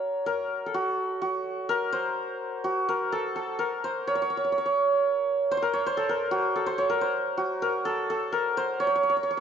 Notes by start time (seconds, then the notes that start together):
Already playing: F#4 A#4 C#5
0.26 A#4
0.66 A4
0.74 F#4
1.22 F#4
1.69 A#4
1.93 C5
2.64 F#4
2.89 A#4
3.12 A4
3.36 A4
3.59 A#4
3.84 C5
4.07 C#5
4.15 C#5
4.22 C#5
4.30 C#5
4.37 C#5
4.44 C#5
4.52 C#5
4.58 C#5
4.66 C#5
5.51 C5
5.57 C5
5.62 A#4
5.73 C#5
5.86 C5
5.97 A4
6.09 A#4
6.31 F#4
6.56 A4
6.66 C5
6.78 C#5
6.90 A#4
7.01 C5
7.37 F#4
7.62 A#4
7.85 A4
8.10 A4
8.32 A#4
8.57 C5
8.80 C#5
8.87 C#5
8.96 C#5
9.03 C#5
9.10 C#5
9.17 C#5
9.23 C#5
9.31 C#5